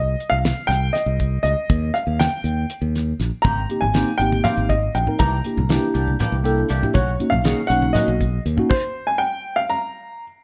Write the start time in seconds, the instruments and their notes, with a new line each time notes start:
Already playing: fingered electric bass C2, grand piano D#5
0.20 closed hi-hat
0.30 fingered electric bass C2, grand piano F5
0.45 snare, closed hi-hat
0.67 fingered electric bass C2, grand piano G5, snare, closed hi-hat
0.93 grand piano D#5, snare, closed hi-hat
1.06 fingered electric bass C2
1.20 kick, closed hi-hat
1.43 fingered electric bass C#2, grand piano D#5, closed hi-hat
1.70 fingered electric bass D#2, kick, closed hi-hat
1.94 grand piano F5, closed hi-hat
2.07 fingered electric bass D#2
2.19 grand piano G5, snare, closed hi-hat
2.44 fingered electric bass D#2, closed hi-hat
2.70 closed hi-hat
2.82 fingered electric bass D#2
2.95 snare, closed hi-hat
3.20 fingered electric bass A#1, snare, closed hi-hat
3.42 fingered electric bass G#1, clean electric guitar D#3 A#3 C4 G4, grand piano A#5, kick, closed hi-hat, high conga, low conga
3.69 tine electric piano A#3 C4 D#4 G4, closed hi-hat, low conga
3.81 fingered electric bass G#1, grand piano G#5, low conga
3.94 clean electric guitar D#3 A#3 C4 G4, tine electric piano A#3 C4 D#4 G4, snare, closed hi-hat
4.18 fingered electric bass G#1, tine electric piano A#3 C4 D#4 G4, grand piano G5, closed hi-hat
4.32 high conga
4.44 clean electric guitar D#3 A#3 C4 G4, grand piano F5, closed hi-hat, low conga
4.58 fingered electric bass G#1, low conga
4.69 grand piano D#5, kick, closed hi-hat
4.95 fingered electric bass A#1, grand piano G5, closed hi-hat
5.06 tine electric piano A#3 C4 D#4 A#4, low conga
5.19 fingered electric bass C2, clean electric guitar E3 A#3 D4 G4, grand piano A#5, kick, closed hi-hat, high conga, low conga
5.44 tine electric piano A#3 D4 E4 G4, closed hi-hat, low conga
5.57 fingered electric bass C2, low conga
5.69 clean electric guitar E3 A#3 D4 G4, tine electric piano A#3 D4 E4 G4, snare, closed hi-hat
5.94 fingered electric bass C2, clean electric guitar A#3 D4 G4, closed hi-hat
6.08 high conga
6.20 clean electric guitar E3 A#3 D4 G4, snare, closed hi-hat, low conga
6.32 fingered electric bass C2, low conga
6.44 tine electric piano A#3 D4 E4 A4 G5, clean electric guitar A#3 D4 G4, closed hi-hat
6.69 fingered electric bass C2, clean electric guitar E3 A#3 D4 G4, tine electric piano E5, closed hi-hat
6.82 tine electric piano A#3 D4 E4 G4, low conga
6.94 fingered electric bass B1, clean electric guitar D#3 A#3 C#4 F#4, grand piano C#5, kick, closed hi-hat, high conga, low conga
7.20 tine electric piano A#3 C#4 D#4 F#4, closed hi-hat, low conga
7.30 fingered electric bass B1, grand piano F5, low conga
7.44 clean electric guitar D#3 A#3 C#4 F#4, tine electric piano A#3 C#4 D#4 G#4, snare, closed hi-hat, low conga
7.67 fingered electric bass B1, clean electric guitar A#3 C#4 F#4, tine electric piano A#3 C#4, grand piano F#5, closed hi-hat
7.71 tine electric piano D#4 F#4
7.82 high conga
7.93 clean electric guitar D#3 A#3 C#4 F#4, grand piano D#5, snare, closed hi-hat, low conga
8.08 fingered electric bass B1
8.21 kick, closed hi-hat
8.46 fingered electric bass D#2, closed hi-hat
8.57 tine electric piano A#3 C#4 D#4 F#4, low conga
8.70 grand piano C5, kick, crash
9.07 grand piano G#5
9.18 grand piano G5
9.56 grand piano F5
9.70 grand piano A#5